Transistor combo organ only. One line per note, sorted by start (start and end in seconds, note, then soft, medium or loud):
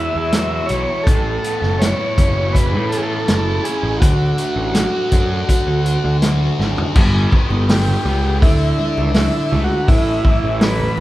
0.00 0.71 E5 medium
0.66 1.06 C#5 medium
1.04 1.81 A4 medium
1.79 2.56 C#5 medium
2.53 2.92 B4 medium
2.89 2.98 A4 medium
2.97 3.05 G#4 medium
3.02 3.65 A4 medium
3.64 3.98 G#4 medium
4.00 6.17 F#4 medium
7.70 8.39 G4 medium
8.42 9.11 E4 medium
9.15 9.61 E4 medium
9.64 9.89 F#4 medium
9.88 10.63 E4 loud
10.63 11.00 B4 medium